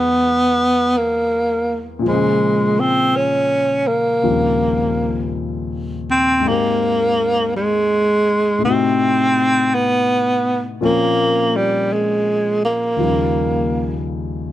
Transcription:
Already playing: E2 B2 F#3 G#3 B3 D#4 A#4
0.98 A#3
1.99 A#2 F3
2.05 G#3 C5
2.11 C#3
2.80 C4
3.16 C#4
3.87 A#3
4.23 D#2 A#2 C#3 F3 G3 C4
6.11 C4
6.40 G#2 G#3
6.45 A#3 C4
6.50 G4
7.57 G#3
8.58 A2 A3
8.64 C3 C4 D#4
8.69 F#4
9.75 B3
10.81 A#2 F3 A#3 C4 C#4
11.56 G3
11.93 G#3
12.65 A#3
12.97 D#2 D#3 F3 G3
13.02 C#3

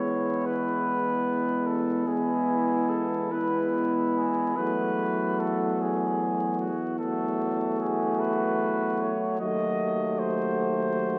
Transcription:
Already playing: E2 G#3 B3 E4 C#5
0.46 B4
1.67 A4
2.07 G#3 B3 E4 G#4
2.89 A4
3.32 G#3 B3 E4 B4
4.15 G#4
4.56 E2 F#3 A3 F#4 B4
5.40 A4
5.82 G#4
6.60 F#4
6.99 F#3 A3 F#4 A4
7.80 G#4
8.20 B4
9.01 C#5
9.40 D#2 F#3 A3 F#4 D#5
10.19 C5

